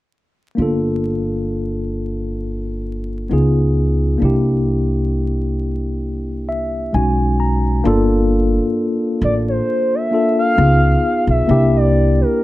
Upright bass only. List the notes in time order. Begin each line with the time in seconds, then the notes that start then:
0.58 G1
3.31 C#2
4.22 C2
6.94 B1
7.85 G1
9.22 A1
10.58 C#2
11.27 B1
11.49 C2